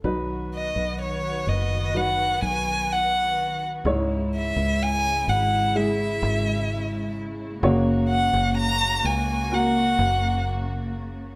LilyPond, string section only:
\new Staff \with { instrumentName = "String section" } { \time 4/4 \key b \mixolydian \tempo 4 = 63 << { <b fis'>1 | <gis e'>1 | <ais fis'>1 | } \\ { dis1 | cis1~ | cis1 | } >> }